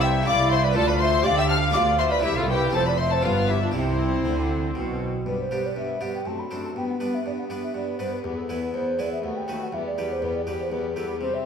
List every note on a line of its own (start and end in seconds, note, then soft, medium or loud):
0.00 0.25 C2 medium
0.00 0.22 C3 medium
0.00 0.25 C3 medium
0.00 0.22 C4 medium
0.00 0.22 E4 medium
0.00 0.25 E4 medium
0.00 0.26 E5 loud
0.00 0.26 G5 loud
0.00 0.09 E6 loud
0.21 0.70 A3 medium
0.21 0.72 E4 medium
0.26 0.75 C2 medium
0.26 0.72 C2 medium
0.26 0.76 C2 medium
0.26 0.75 E4 medium
0.26 0.51 D5 loud
0.26 0.50 F5 loud
0.26 0.50 D6 loud
0.51 0.63 C5 loud
0.51 0.64 E5 medium
0.51 0.63 C6 loud
0.63 0.76 B4 loud
0.63 0.75 D5 medium
0.63 0.76 B5 loud
0.71 1.69 A3 medium
0.71 1.70 D4 medium
0.71 1.70 F4 medium
0.71 0.88 A4 loud
0.75 1.25 D2 medium
0.75 1.24 D2 loud
0.75 1.21 D2 medium
0.75 1.24 F4 medium
0.75 0.88 D5 loud
0.75 0.88 A5 loud
0.88 0.93 B4 loud
0.88 0.94 D5 medium
0.88 1.00 B5 loud
0.99 1.25 C5 loud
0.99 1.25 E5 loud
0.99 1.25 C6 loud
1.24 1.73 D2 loud
1.24 1.70 D3 medium
1.24 1.74 D3 medium
1.24 1.74 G4 medium
1.24 1.37 D5 loud
1.24 1.37 F5 loud
1.24 1.37 D6 loud
1.37 1.50 E5 medium
1.37 1.43 G5 loud
1.37 1.49 E6 loud
1.49 1.74 F5 loud
1.49 1.55 A5 loud
1.49 1.57 F6 loud
1.69 2.20 B3 medium
1.69 2.21 D4 medium
1.69 2.21 F4 medium
1.69 1.81 D6 loud
1.74 2.24 D2 medium
1.74 2.20 D2 medium
1.74 2.24 F4 medium
1.74 1.99 D5 loud
1.74 2.00 F5 loud
1.98 2.11 C5 medium
1.98 2.12 E5 loud
1.98 2.03 C6 loud
2.10 2.24 B4 medium
2.10 2.25 D5 medium
2.10 2.24 B5 loud
2.19 2.70 C4 medium
2.19 2.70 E4 medium
2.19 2.71 G4 medium
2.23 2.72 C2 loud
2.23 2.70 C2 medium
2.23 2.73 C2 medium
2.23 2.36 E4 loud
2.23 2.73 E4 medium
2.23 2.36 G4 loud
2.23 2.36 E5 loud
2.36 2.48 F4 medium
2.36 2.51 A4 medium
2.36 2.49 F5 loud
2.49 2.73 G4 medium
2.49 2.73 B4 loud
2.49 2.73 G5 loud
2.69 3.20 A3 medium
2.69 3.21 C4 medium
2.69 3.21 F4 medium
2.69 2.86 A5 loud
2.73 3.23 F1 medium
2.73 3.19 F2 medium
2.73 3.23 F2 medium
2.73 3.24 C4 medium
2.73 2.86 A4 medium
2.73 2.86 C5 medium
2.86 2.99 B4 medium
2.86 2.99 D5 medium
2.86 2.99 B5 loud
2.98 3.11 C5 medium
2.98 3.14 E5 medium
2.98 3.11 C6 loud
3.11 3.23 A4 medium
3.11 3.24 C5 medium
3.11 3.24 A5 loud
3.21 3.74 G1 medium
3.21 3.74 G2 medium
3.21 3.70 G2 medium
3.21 3.71 B3 medium
3.21 3.73 B3 medium
3.21 3.72 D4 medium
3.21 3.49 F4 medium
3.21 3.51 B4 medium
3.21 3.49 F5 loud
3.49 3.61 E4 medium
3.49 3.61 G4 medium
3.49 3.61 E5 loud
3.62 3.74 D4 medium
3.62 3.74 F4 medium
3.62 3.74 D5 medium
3.71 4.24 C2 medium
3.71 4.24 C3 medium
3.71 4.21 C3 medium
3.71 5.21 C4 medium
3.71 4.99 C4 medium
3.71 5.04 C4 medium
3.71 5.22 E4 medium
3.71 4.99 E4 medium
3.71 5.01 C5 loud
4.25 4.75 D2 medium
4.25 4.75 D3 medium
4.25 4.72 D3 medium
4.75 5.25 B1 medium
4.75 5.22 B2 medium
4.75 5.25 B2 medium
5.26 5.34 G2 soft
5.26 5.49 G2 soft
5.26 5.50 G3 soft
5.26 5.50 B3 soft
5.26 5.50 D4 soft
5.26 5.38 B4 medium
5.40 5.67 C5 soft
5.51 5.74 G2 soft
5.51 5.60 G2 soft
5.51 5.75 G3 soft
5.51 5.87 B3 soft
5.51 5.75 B3 soft
5.51 5.75 D4 soft
5.51 5.87 D4 soft
5.51 5.88 G4 soft
5.66 5.76 D5 soft
5.76 5.99 G2 soft
5.76 5.84 G2 soft
5.76 6.00 G3 soft
5.76 6.00 B3 soft
5.76 6.00 D4 soft
5.76 6.03 E5 soft
6.01 6.23 G2 soft
6.01 6.09 G2 soft
6.01 6.26 G3 soft
6.01 6.19 B3 soft
6.01 6.26 B3 soft
6.01 6.19 D4 soft
6.01 6.25 D4 soft
6.01 6.19 G4 soft
6.01 6.14 F#5 medium
6.15 6.28 G5 soft
6.25 6.48 F#2 soft
6.25 6.34 F#2 soft
6.25 6.50 A3 soft
6.25 6.51 C4 soft
6.25 6.50 D4 soft
6.25 6.40 A5 medium
6.39 6.64 B5 medium
6.51 6.59 F#2 soft
6.51 6.73 F#2 soft
6.51 6.75 A3 soft
6.51 6.69 C4 soft
6.51 6.76 C4 soft
6.51 6.69 D4 soft
6.51 6.75 D4 soft
6.51 6.69 A4 soft
6.65 6.70 A5 soft
6.76 6.84 G2 soft
6.76 6.98 G2 soft
6.76 6.99 B3 soft
6.76 7.00 B3 soft
6.76 7.00 D4 soft
6.76 6.88 G5 medium
6.89 7.16 F#5 medium
7.00 7.23 G2 soft
7.00 7.09 G2 soft
7.00 7.36 B3 soft
7.00 7.24 B3 soft
7.00 7.25 B3 soft
7.00 7.36 D4 soft
7.00 7.25 D4 soft
7.00 7.37 B4 soft
7.14 7.25 E5 medium
7.25 7.34 G2 soft
7.25 7.48 G2 soft
7.25 7.49 B3 soft
7.25 7.50 B3 soft
7.25 7.49 D4 soft
7.25 7.31 D5 medium
7.38 7.44 F#5 medium
7.50 7.72 G2 soft
7.50 7.58 G2 soft
7.50 7.86 B3 soft
7.50 7.73 B3 soft
7.50 7.74 B3 soft
7.50 7.74 D4 soft
7.50 7.86 D4 soft
7.50 7.86 B4 soft
7.63 7.75 E5 soft
7.74 7.97 G2 soft
7.74 7.83 G2 soft
7.74 7.98 B3 soft
7.74 7.99 B3 soft
7.74 7.99 D4 soft
7.74 7.98 D5 soft
7.99 8.22 G2 soft
7.99 8.08 G2 soft
7.99 8.17 B3 soft
7.99 8.23 B3 soft
7.99 8.17 D4 soft
7.99 8.24 D4 soft
7.99 8.18 B4 soft
7.99 8.14 C5 medium
8.12 8.25 B4 soft
8.24 8.47 E2 soft
8.24 8.32 E2 soft
8.24 8.48 B3 soft
8.24 8.49 E4 soft
8.24 8.38 G4 medium
8.36 8.61 A4 soft
8.49 8.57 E2 soft
8.49 8.72 E2 soft
8.49 8.73 B3 soft
8.49 8.85 B3 soft
8.49 8.85 E4 soft
8.49 8.74 E4 soft
8.49 8.86 B4 soft
8.63 8.76 B4 medium
8.74 8.82 E2 soft
8.74 8.96 E2 soft
8.74 8.97 B3 soft
8.74 8.98 B3 soft
8.74 8.99 E4 soft
8.74 9.01 C5 medium
8.98 9.07 E2 soft
8.98 9.21 E2 soft
8.98 9.23 B3 soft
8.98 9.22 B3 soft
8.98 9.17 B3 soft
8.98 9.17 E4 soft
8.98 9.23 E4 soft
8.98 9.17 B4 soft
8.98 9.11 D5 medium
9.12 9.23 E5 soft
9.23 9.46 D#2 soft
9.23 9.32 D#2 soft
9.23 9.46 A3 soft
9.23 9.48 B3 soft
9.23 9.47 F#4 soft
9.23 9.38 F#5 medium
9.36 9.64 G5 medium
9.48 9.56 D#2 soft
9.48 9.70 D#2 soft
9.48 9.72 A3 soft
9.48 9.66 A3 soft
9.48 9.72 B3 soft
9.48 9.66 F#4 soft
9.48 9.73 F#4 soft
9.48 9.67 B4 soft
9.63 9.75 F#5 medium
9.72 9.95 E2 soft
9.72 9.81 E2 soft
9.72 9.96 G3 soft
9.72 9.96 B3 soft
9.72 9.98 G4 soft
9.72 9.86 E5 medium
9.86 10.14 D5 medium
9.97 10.05 E2 soft
9.97 10.20 E2 soft
9.97 10.20 G3 soft
9.97 10.21 B3 soft
9.97 10.34 G4 soft
9.97 10.22 G4 soft
9.97 10.34 B4 soft
10.12 10.24 C5 medium
10.21 10.29 E2 soft
10.21 10.44 E2 soft
10.21 10.45 G3 soft
10.21 10.45 B3 soft
10.21 10.46 G4 soft
10.21 10.34 B4 medium
10.35 10.41 D5 medium
10.46 10.55 E2 soft
10.46 10.69 E2 soft
10.46 10.70 G3 soft
10.46 10.71 B3 soft
10.46 10.83 G4 soft
10.46 10.71 G4 soft
10.46 10.83 B4 soft
10.60 10.70 C5 soft
10.71 10.79 E2 soft
10.71 10.94 E2 soft
10.71 10.95 G3 soft
10.71 10.95 B3 soft
10.71 10.95 G4 soft
10.71 10.96 B4 medium
10.96 11.04 E2 soft
10.96 11.19 E2 soft
10.96 11.20 G3 soft
10.96 11.21 B3 soft
10.96 11.14 G4 soft
10.96 11.20 G4 soft
10.96 11.09 A4 medium
10.96 11.15 B4 soft
11.10 11.15 G4 soft
11.21 11.43 C3 soft
11.21 11.30 C3 medium
11.21 11.45 G3 soft
11.21 11.45 C4 medium
11.21 11.45 G4 medium
11.21 11.35 C5 medium
11.34 11.46 E5 medium